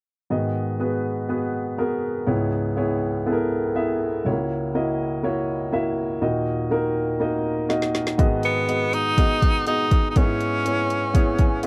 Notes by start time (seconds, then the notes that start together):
0.30 G#2 D#3 B3 F#4 G#4 D#5
0.80 B3 F#4 G#4 B4
1.29 B3 F#4 G#4 B4
1.78 B3 F#4 G#4 A#4
2.26 C#2 G#2 B3 E4 G#4 C#5
2.77 B3 E4 G#4 C#5
3.26 B3 E4 G#4 A4
3.33 A#4
3.75 B3 E4 G#4 E5
4.25 C#2 C#3 G#3 E4 F#4 C#5
4.31 A#3
4.74 A#3 E4 F#4 D#5
5.23 A#3 E4 F#4 C#5
5.72 A#3 E4 F#4 E5
6.21 D#2 A#2 A#3 D#4 F#4 D#5
6.71 A#3 D#4 F#4 A#4
7.20 A#3 D#4 F#4 D#5
7.69 A#3 D#4 F#4 D#5, snare
7.82 snare
7.95 snare
8.07 snare
8.18 G#2 D#3 B3 F#4 G#4 D#5, kick, closed hi-hat
8.43 B3, closed hi-hat
8.67 B3 F#4 G#4 D#5, closed hi-hat
8.93 D#4, closed hi-hat
9.17 B3 F#4 G#4 D#5, kick, closed hi-hat
9.42 kick, closed hi-hat
9.66 B3 D#4 F#4 G#4 D#5, closed hi-hat
9.91 kick, closed hi-hat
10.10 D#4
10.16 G#2 B3 C#4 D#4 G#4 C#5, kick, closed hi-hat
10.22 E4
10.41 closed hi-hat
10.65 B3 E4 G#4 C#5, closed hi-hat
10.90 closed hi-hat
11.13 B3 E4 G#4 C#5, kick, closed hi-hat
11.39 G#5, kick, closed hi-hat
11.63 B3 E4 G#4 E5, closed hi-hat